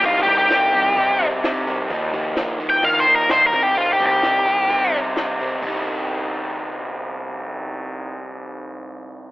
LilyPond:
<<
  \new Staff \with { instrumentName = "Lead electric guitar" } { \time 4/4 \key c \minor \tempo 4 = 128 \tuplet 3/2 { f'8 g'8 g'8~ } g'4. r4. | r4 \tuplet 3/2 { r4 g''8 f''8 c''8 bes'8 c''8 bes'8 g'8 } | \tuplet 3/2 { f'8 g'8 g'8~ } g'4. r4. | r1 |
r1 | }
  \new Staff \with { instrumentName = "Overdriven electric guitar" } { \time 4/4 \key c \minor <c g c' ees'>8 <c g c' ees'>8 <c g c' ees'>8 <c g c' ees'>8 <c g c' ees'>8 <c g c' ees'>8 <c g c' ees'>8 <c g c' ees'>8 | <ees f bes ees'>8 <ees f bes ees'>8 <ees f bes ees'>8 <ees f bes ees'>8 <ees f bes ees'>8 <ees f bes ees'>8 <ees f bes ees'>8 <c g c' ees'>8 | <c g c' ees'>8 <c g c' ees'>8 <c g c' ees'>8 <c g c' ees'>8 <c g c' ees'>8 <c g c' ees'>8 <c g c' ees'>8 <c g c' ees'>8 | <c g c' ees' g'>1~ |
<c g c' ees' g'>1 | }
  \new Staff \with { instrumentName = "Picked electric bass" } { \clef bass \time 4/4 \key c \minor c,8 c,4. c2 | ees,8 ees,8 r4 ees4. c,8~ | c,8 c,4. c2 | c,1~ |
c,1 | }
  \new DrumStaff \with { instrumentName = "Drums" } \drummode { \time 4/4 <hho bd>8 <hho bd>8 <hho sn>8 hho8 <hho bd>8 hho8 <hho sn>8 hho8 | <hho bd>8 <hho bd>8 <hho sn>8 hho8 <hho bd>8 hho8 <hho sn>8 <hho bd>8 | hho8 <hho bd>8 <hho sn>8 hho8 <hho bd>8 hho8 <hho sn>8 hho8 | <hho bd>4 r4 r4 r4 |
r4 r4 r4 r4 | }
>>